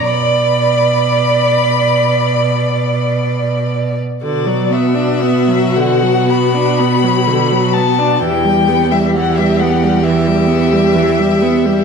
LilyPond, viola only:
\new Staff \with { instrumentName = "Viola" } { \clef bass \time 4/4 \key b \minor \tempo 4 = 61 d''2.~ d''8 r8 | d16 fis16 b16 d'16 b16 fis16 d16 fis16 b16 d'16 b16 fis16 d16 fis16 b16 d'16 | e16 g16 b16 g16 e16 g16 b16 g16 e16 g16 b16 g16 e16 g16 b16 g16 | }